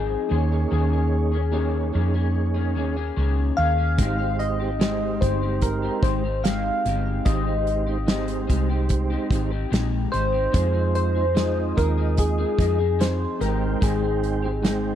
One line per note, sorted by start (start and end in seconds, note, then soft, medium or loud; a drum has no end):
0.00 0.14 G#1 medium
0.00 0.29 F3 medium
0.00 0.29 C4 medium
0.00 0.30 D#4 medium
0.00 0.30 G#4 medium
0.00 0.72 G#4 medium
0.29 0.64 D#2 loud
0.29 0.50 D#3 medium
0.29 1.37 A#3 medium
0.29 0.51 A#3 medium
0.29 0.51 C#4 medium
0.29 1.37 D#4 medium
0.29 1.38 G#4 medium
0.29 0.50 G#4 medium
0.29 0.37 C5 medium
0.38 1.41 C#5 medium
0.51 0.70 A#3 soft
0.51 0.71 C#4 soft
0.51 0.71 G#4 medium
0.71 1.90 D#2 loud
0.71 0.92 D#3 medium
0.71 0.92 A#3 medium
0.71 0.92 C#4 medium
0.71 0.90 G#4 medium
0.71 1.91 G#4 medium
0.92 1.33 A#3 soft
0.92 1.32 C#4 soft
0.92 1.31 G#4 soft
1.32 1.51 A#3 soft
1.32 1.51 C#4 soft
1.32 1.52 G#4 soft
1.51 1.91 D#3 medium
1.51 2.95 A#3 medium
1.51 1.93 A#3 medium
1.51 1.93 C#4 medium
1.51 2.96 D#4 medium
1.51 1.60 G4 soft
1.51 1.94 G#4 medium
1.51 2.97 C#5 medium
1.59 2.99 G#4 medium
1.93 2.77 F2 medium
1.93 2.14 D#3 medium
1.93 2.15 A#3 medium
1.93 2.13 C#4 medium
1.93 2.13 G#4 medium
2.14 2.55 A#3 soft
2.14 2.55 C#4 medium
2.14 2.53 G#4 medium
2.54 2.75 A#3 soft
2.54 2.76 C#4 medium
2.54 2.76 G#4 medium
2.75 3.09 D#2 medium
2.75 2.96 D#3 medium
2.75 2.97 A#3 medium
2.75 2.96 C#4 medium
2.75 2.95 G#4 medium
2.96 3.16 A#3 medium
2.96 3.16 C#4 medium
2.96 3.17 G#4 medium
3.16 3.50 C#2 medium
3.16 3.57 D#3 medium
3.16 3.58 A#3 medium
3.16 3.58 C#4 medium
3.16 3.59 G#4 medium
3.57 4.00 D#2 medium
3.57 3.78 D#3 medium
3.57 3.79 A#3 medium
3.57 3.77 C#4 medium
3.57 3.77 G#4 medium
3.57 4.42 F5 loud
3.78 3.98 A#3 soft
3.78 3.99 C#4 soft
3.78 3.99 G#4 medium
3.97 5.18 G#1 loud
3.97 4.70 G#3 medium
3.97 4.19 G#3 medium
3.97 4.19 C4 medium
3.97 4.70 D#4 medium
3.97 4.18 D#4 medium
3.97 4.70 G4 medium
3.97 4.17 G4 medium
3.97 4.71 C5 medium
3.97 kick medium
3.97 closed hi-hat medium
4.19 4.61 C4 soft
4.19 4.59 D#4 soft
4.19 4.58 G4 medium
4.39 5.24 D#5 medium
4.39 closed hi-hat medium
4.60 4.80 C4 soft
4.60 4.79 D#4 soft
4.60 4.80 G4 soft
4.79 6.23 G#3 medium
4.79 5.20 G#3 medium
4.79 5.21 C4 medium
4.79 6.23 D#4 medium
4.79 5.22 D#4 medium
4.79 6.24 G4 medium
4.79 5.22 G4 medium
4.79 6.24 C5 medium
4.79 snare loud
4.79 closed hi-hat medium
5.21 5.88 G1 medium
5.21 5.42 G#3 medium
5.21 5.42 C4 medium
5.21 5.41 D#4 medium
5.21 5.40 G4 medium
5.21 5.64 C5 medium
5.21 kick medium
5.21 closed hi-hat medium
5.41 5.83 C4 soft
5.41 5.82 D#4 soft
5.41 5.81 G4 soft
5.61 6.01 A#4 medium
5.61 kick medium
5.61 closed hi-hat medium
5.82 6.03 C4 soft
5.82 6.03 D#4 medium
5.82 6.03 G4 medium
6.03 6.68 G#1 medium
6.03 6.24 G#3 medium
6.03 6.24 C4 medium
6.03 6.24 D#4 medium
6.03 6.23 G4 medium
6.03 6.41 C5 medium
6.03 kick medium
6.03 closed hi-hat medium
6.24 6.43 C4 soft
6.24 6.44 D#4 soft
6.24 6.44 G4 medium
6.43 6.84 G#3 medium
6.43 6.85 C4 medium
6.43 6.86 D#4 medium
6.43 6.86 G4 medium
6.43 7.29 F5 medium
6.43 snare loud
6.43 closed hi-hat medium
6.85 7.18 G1 medium
6.85 7.24 G#3 medium
6.85 7.25 C4 medium
6.85 7.25 D#4 medium
6.85 7.26 G4 medium
6.85 closed hi-hat medium
7.25 8.45 G#1 loud
7.25 7.46 G#3 medium
7.25 7.97 G#3 medium
7.25 7.47 C4 medium
7.25 7.98 D#4 medium
7.25 7.46 D#4 medium
7.25 7.98 G4 medium
7.25 7.45 G4 medium
7.25 7.98 C5 medium
7.25 8.45 D#5 medium
7.25 kick medium
7.25 closed hi-hat medium
7.46 7.87 C4 soft
7.46 7.86 D#4 soft
7.46 7.85 G4 soft
7.67 closed hi-hat medium
7.86 8.06 C4 soft
7.86 8.07 D#4 soft
7.86 8.07 G4 soft
8.07 8.46 G#3 medium
8.07 9.51 G#3 medium
8.07 8.47 C4 medium
8.07 9.51 D#4 medium
8.07 8.48 D#4 medium
8.07 8.49 G4 medium
8.07 9.51 G4 medium
8.07 9.52 C5 medium
8.07 snare loud
8.07 closed hi-hat medium
8.28 closed hi-hat soft
8.47 9.15 C2 medium
8.47 8.69 G#3 medium
8.47 8.69 C4 medium
8.47 8.69 D#4 medium
8.47 8.68 G4 medium
8.47 kick medium
8.47 closed hi-hat medium
8.69 9.11 C4 soft
8.69 9.10 D#4 medium
8.69 9.09 G4 medium
8.89 kick medium
8.89 closed hi-hat medium
9.10 9.30 C4 medium
9.10 9.31 D#4 soft
9.10 9.31 G4 medium
9.30 9.63 G#1 medium
9.30 9.52 G#3 medium
9.30 9.52 C4 medium
9.30 9.51 D#4 medium
9.30 9.49 G4 medium
9.30 kick medium
9.30 closed hi-hat medium
9.50 9.70 C4 medium
9.50 9.70 D#4 medium
9.50 9.71 G4 medium
9.70 10.05 A#1 medium
9.70 10.11 G#3 medium
9.70 10.12 C4 medium
9.70 10.12 D#4 medium
9.70 10.13 G4 medium
9.70 snare loud
9.70 closed hi-hat medium
10.12 10.46 G#1 medium
10.12 10.33 G#3 medium
10.12 10.34 C4 medium
10.12 10.33 D#4 medium
10.12 10.31 G4 medium
10.12 10.94 C5 medium
10.12 closed hi-hat medium
10.32 10.51 C4 soft
10.32 10.52 D#4 soft
10.32 10.53 G4 medium
10.52 11.73 F2 loud
10.52 10.74 F3 medium
10.52 11.25 G#3 medium
10.52 10.74 C4 medium
10.52 10.73 D#4 medium
10.52 11.25 D#4 medium
10.52 11.26 F4 medium
10.52 10.72 G#4 medium
10.52 11.26 C5 medium
10.52 kick medium
10.52 closed hi-hat medium
10.74 11.16 C4 soft
10.74 11.14 D#4 soft
10.74 11.13 G#4 medium
10.95 11.80 C5 loud
10.95 closed hi-hat medium
11.15 11.34 C4 soft
11.15 11.35 D#4 soft
11.15 11.35 G#4 soft
11.34 11.75 F3 medium
11.34 12.78 G#3 medium
11.34 11.76 C4 medium
11.34 12.79 D#4 medium
11.34 11.76 D#4 medium
11.34 12.79 F4 medium
11.34 11.77 G#4 medium
11.34 12.80 D#5 medium
11.34 snare loud
11.34 closed hi-hat medium
11.76 12.43 D#2 medium
11.76 11.97 F3 medium
11.76 11.97 C4 medium
11.76 11.97 D#4 medium
11.76 11.96 G#4 medium
11.76 12.19 A#4 medium
11.76 kick medium
11.76 closed hi-hat medium
11.98 12.38 C4 soft
11.98 12.37 D#4 soft
11.98 12.37 G#4 medium
12.17 13.03 G#4 medium
12.17 kick medium
12.17 closed hi-hat medium
12.38 12.57 C4 soft
12.38 12.58 D#4 medium
12.38 12.58 G#4 medium
12.57 13.24 F2 medium
12.57 12.79 F3 medium
12.57 12.79 C4 medium
12.57 12.78 D#4 medium
12.57 12.77 G#4 medium
12.57 kick medium
12.57 closed hi-hat medium
12.78 12.98 C4 soft
12.78 12.99 D#4 soft
12.78 12.99 G#4 medium
12.99 13.39 F3 medium
12.99 13.39 C4 medium
12.99 13.40 D#4 medium
12.99 13.41 G#4 medium
12.99 13.39 C5 medium
12.99 snare loud
12.99 closed hi-hat medium
13.39 13.74 G#1 medium
13.39 14.48 G#3 medium
13.39 13.80 G#3 medium
13.39 13.80 C4 medium
13.39 14.48 D#4 medium
13.39 13.81 D#4 medium
13.39 13.81 G4 medium
13.39 13.83 A#4 medium
13.39 13.48 A#4 medium
13.39 14.49 G5 medium
13.39 snare soft
13.39 closed hi-hat medium
13.48 14.52 C5 medium
13.81 14.95 G#1 loud
13.81 14.02 G#3 medium
13.81 14.02 C4 medium
13.81 14.01 D#4 medium
13.81 14.03 G4 medium
13.81 14.95 G#4 medium
13.81 kick medium
13.81 closed hi-hat medium
14.03 14.44 C4 soft
14.03 14.43 D#4 soft
14.24 closed hi-hat medium
14.42 14.62 C4 soft
14.42 14.63 D#4 soft
14.42 14.64 G4 soft
14.62 14.95 G#3 medium
14.62 14.95 C4 medium
14.62 14.95 D#4 medium
14.62 14.71 A#4 medium
14.62 14.95 G5 medium
14.62 snare loud
14.62 closed hi-hat medium
14.71 14.95 C5 medium